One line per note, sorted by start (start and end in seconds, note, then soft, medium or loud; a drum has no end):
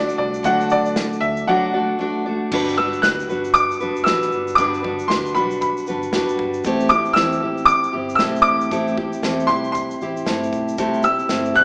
0.00 0.43 A3 medium
0.00 0.45 D4 medium
0.00 0.46 F#4 medium
0.00 0.17 D5 medium
0.00 0.46 D5 medium
0.09 shaker soft
0.18 0.40 C2 medium
0.18 0.45 D5 medium
0.34 shaker soft
0.43 1.08 D2 medium
0.43 1.47 D3 medium
0.43 1.47 F#3 medium
0.43 1.47 A3 medium
0.43 1.48 D4 medium
0.43 1.49 F#4 medium
0.43 1.48 D5 medium
0.43 0.69 F#5 loud
0.43 kick loud
0.43 shaker medium
0.61 shaker soft
0.70 1.19 D5 medium
0.70 shaker medium
0.85 shaker medium
0.96 snare loud
0.96 shaker medium
1.13 shaker soft
1.21 1.43 D2 loud
1.21 1.48 E5 medium
1.21 shaker soft
1.37 shaker medium
1.47 1.74 D3 medium
1.47 1.74 F#3 medium
1.47 1.74 A3 medium
1.47 1.74 D4 medium
1.47 1.73 F#4 medium
1.47 1.72 D5 medium
1.47 2.21 F#5 medium
1.74 1.98 A3 soft
1.74 1.99 D4 soft
1.74 1.99 F#4 medium
1.74 2.00 D5 medium
1.99 2.25 A3 medium
1.99 2.26 D4 medium
1.99 2.26 F#4 medium
1.99 2.25 D5 medium
2.26 2.53 A3 soft
2.26 2.52 D4 soft
2.26 2.52 F#4 soft
2.26 2.51 D5 medium
2.52 2.94 G1 loud
2.52 2.77 G2 medium
2.52 2.78 D3 medium
2.52 2.78 G3 medium
2.52 2.78 D4 medium
2.52 2.77 F#4 medium
2.52 2.77 B4 medium
2.52 kick loud
2.52 crash medium
2.68 shaker medium
2.77 3.01 G3 soft
2.77 3.02 D4 soft
2.77 3.04 F#4 medium
2.77 3.03 B4 medium
2.77 3.04 E6 medium
2.77 kick medium
2.93 shaker medium
3.02 3.25 D2 medium
3.02 3.29 G3 medium
3.02 3.29 D4 medium
3.02 3.29 F#4 medium
3.02 3.28 B4 medium
3.02 3.56 F#6 medium
3.02 snare loud
3.02 shaker medium
3.20 shaker soft
3.29 3.71 G1 medium
3.29 3.83 G3 soft
3.29 3.81 D4 soft
3.29 3.81 F#4 medium
3.29 3.79 B4 medium
3.29 shaker soft
3.44 shaker medium
3.54 4.07 D6 loud
3.54 kick loud
3.54 shaker medium
3.71 shaker soft
3.80 4.02 F#1 medium
3.80 4.06 G3 soft
3.80 4.06 D4 soft
3.80 4.07 F#4 medium
3.80 4.06 B4 medium
3.80 shaker medium
3.96 shaker medium
4.04 4.28 A1 medium
4.04 4.58 G3 medium
4.04 4.58 D4 medium
4.04 4.58 E6 medium
4.04 snare loud
4.04 shaker medium
4.08 4.58 F#4 medium
4.08 4.59 B4 medium
4.22 snare soft
4.22 shaker medium
4.32 4.54 G1 medium
4.32 shaker soft
4.48 shaker medium
4.55 5.01 G1 loud
4.55 4.84 G2 medium
4.55 4.84 D3 medium
4.55 4.84 G3 medium
4.55 5.10 D6 medium
4.55 kick loud
4.55 shaker medium
4.59 4.83 D4 medium
4.59 4.83 F#4 medium
4.59 4.82 B4 medium
4.74 shaker soft
4.83 5.07 G3 soft
4.83 5.08 D4 soft
4.83 5.08 F#4 soft
4.83 5.09 B4 medium
4.83 kick medium
4.99 shaker medium
5.08 5.38 D2 loud
5.08 5.35 G3 medium
5.08 5.35 D4 medium
5.08 5.35 F#4 medium
5.08 5.34 B4 medium
5.08 5.36 C6 medium
5.08 snare loud
5.08 shaker medium
5.26 shaker soft
5.35 5.89 B1 medium
5.35 5.89 G3 soft
5.35 5.88 D4 medium
5.35 5.87 F#4 medium
5.35 5.86 B4 medium
5.35 5.60 B5 medium
5.35 shaker soft
5.51 shaker medium
5.61 6.35 B5 medium
5.61 kick medium
5.61 shaker medium
5.77 shaker medium
5.87 6.09 G1 medium
5.87 6.11 G3 soft
5.87 6.12 D4 soft
5.87 6.13 F#4 medium
5.87 6.13 B4 medium
5.87 shaker medium
6.03 shaker medium
6.13 6.35 F#1 medium
6.13 6.65 G3 medium
6.13 6.65 D4 medium
6.13 6.65 F#4 medium
6.13 6.66 B4 medium
6.13 snare loud
6.13 shaker medium
6.29 shaker medium
6.39 6.60 G1 medium
6.39 kick loud
6.54 shaker medium
6.64 7.07 A1 loud
6.64 6.91 A3 medium
6.64 6.91 C4 medium
6.64 6.91 E4 medium
6.64 6.90 G4 loud
6.64 kick loud
6.64 shaker medium
6.80 shaker medium
6.89 7.16 G4 medium
6.89 7.17 D6 medium
6.89 kick loud
6.89 shaker medium
6.93 7.16 E4 soft
7.05 shaker soft
7.13 7.38 E2 loud
7.13 7.42 A3 medium
7.13 7.42 C4 medium
7.13 7.42 E4 medium
7.13 7.68 E6 loud
7.13 snare loud
7.13 shaker medium
7.18 7.41 G4 medium
7.32 shaker soft
7.42 7.85 A1 medium
7.42 7.95 C4 medium
7.42 7.94 E4 soft
7.42 7.92 G4 medium
7.58 shaker medium
7.65 8.15 D6 loud
7.65 kick loud
7.65 shaker medium
7.83 shaker medium
7.93 8.15 G1 medium
7.93 8.18 C4 soft
7.93 8.19 E4 soft
7.93 8.19 G4 medium
8.09 shaker medium
8.15 8.71 A3 medium
8.15 8.71 C4 medium
8.15 8.22 E6 medium
8.15 snare loud
8.19 8.41 B1 medium
8.19 8.72 E4 medium
8.19 8.72 G4 medium
8.19 shaker medium
8.36 shaker medium
8.42 8.67 A1 medium
8.42 9.50 D6 loud
8.61 shaker medium
8.71 9.14 A1 loud
8.71 8.97 A3 medium
8.71 8.97 C4 medium
8.71 8.98 E4 medium
8.71 8.96 G4 medium
8.71 kick loud
8.71 shaker medium
8.88 shaker soft
8.97 9.22 C4 soft
8.97 9.23 E4 soft
8.97 9.23 G4 medium
8.97 kick loud
9.13 shaker medium
9.22 9.44 E2 medium
9.22 9.49 A3 medium
9.22 9.49 C4 medium
9.22 9.49 E4 medium
9.22 9.47 G4 medium
9.22 snare loud
9.22 shaker medium
9.40 shaker soft
9.47 9.91 C2 medium
9.47 10.02 E4 soft
9.47 10.02 G4 medium
9.47 9.71 C6 medium
9.47 kick medium
9.47 shaker soft
9.51 10.04 C4 soft
9.64 shaker medium
9.72 10.47 C6 medium
9.72 kick medium
9.72 shaker medium
9.91 shaker medium
10.01 10.22 A1 medium
10.01 10.26 C4 soft
10.01 10.27 E4 medium
10.01 10.27 G4 medium
10.01 shaker medium
10.17 shaker medium
10.26 10.53 G1 medium
10.26 10.78 A3 medium
10.26 10.78 C4 medium
10.26 10.79 E4 medium
10.26 10.79 G4 medium
10.26 snare loud
10.26 shaker medium
10.43 shaker medium
10.53 10.74 B1 medium
10.53 kick medium
10.53 shaker soft
10.68 shaker medium
10.78 11.21 C2 loud
10.78 11.04 C3 medium
10.78 11.04 A3 medium
10.78 11.04 C4 medium
10.78 11.04 E4 medium
10.78 11.02 G4 medium
10.78 kick loud
10.78 shaker medium
10.94 shaker soft
11.03 11.29 C4 soft
11.03 11.29 E4 soft
11.03 11.29 G4 medium
11.03 11.57 E6 loud
11.03 kick medium
11.03 shaker medium
11.19 shaker medium
11.29 11.51 G1 medium
11.29 11.55 A3 medium
11.29 11.55 C4 medium
11.29 11.55 E4 medium
11.29 11.53 G4 medium
11.29 snare loud
11.29 shaker medium
11.45 shaker soft
11.54 11.64 B1 medium
11.54 11.64 C4 soft
11.54 11.64 E4 medium
11.54 11.64 G4 medium
11.54 11.64 F#6 loud
11.54 shaker soft